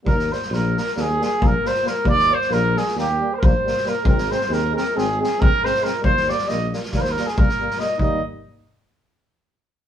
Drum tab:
SD |-oooo-ooo-o---ooo-|-o-oo-ooo-----ooo-|-oooo-o-o-o---ooo-|-oooo-oooooo-o-oo-|
BD |o-----------o-----|o-----------o-----|o-----------o-----|o-------o---o-----|

SD |------------------|
BD |o-----------------|